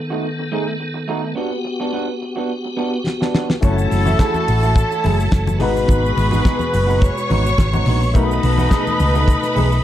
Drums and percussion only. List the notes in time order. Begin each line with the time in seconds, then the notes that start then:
3.07 snare
3.22 snare
3.35 snare
3.50 snare
3.62 kick, closed hi-hat, muted conga, low conga, shaker
3.78 shaker
3.91 open hi-hat, shaker
4.06 high conga, shaker
4.19 kick, snare, closed hi-hat, shaker
4.34 high conga, shaker
4.48 open hi-hat, muted conga, shaker
4.63 shaker
4.76 kick, closed hi-hat, muted conga, shaker
4.91 shaker
5.04 open hi-hat, muted conga, high conga
5.20 shaker
5.32 kick, snare, closed hi-hat, muted conga, shaker
5.47 high conga, shaker
5.60 open hi-hat, low conga
5.77 shaker
5.88 kick, closed hi-hat, muted conga, low conga, shaker
6.05 shaker
6.17 open hi-hat, muted conga, shaker
6.31 high conga, shaker
6.45 kick, snare, closed hi-hat, muted conga, shaker
6.59 high conga, shaker
6.74 open hi-hat, muted conga, shaker
6.90 shaker
7.01 kick, closed hi-hat, muted conga, shaker
7.18 shaker
7.30 open hi-hat, muted conga, high conga
7.46 shaker
7.58 kick, snare, closed hi-hat, muted conga, shaker
7.73 high conga, shaker
7.86 open hi-hat, muted conga, low conga
8.03 shaker
8.14 kick, closed hi-hat, low conga, shaker
8.31 shaker
8.43 open hi-hat, muted conga, shaker
8.57 high conga, shaker
8.71 kick, snare, closed hi-hat, shaker
8.87 high conga, shaker
9.00 open hi-hat, muted conga, shaker
9.15 shaker
9.28 kick, closed hi-hat, muted conga, shaker
9.43 snare, shaker
9.56 open hi-hat, muted conga, high conga
9.72 shaker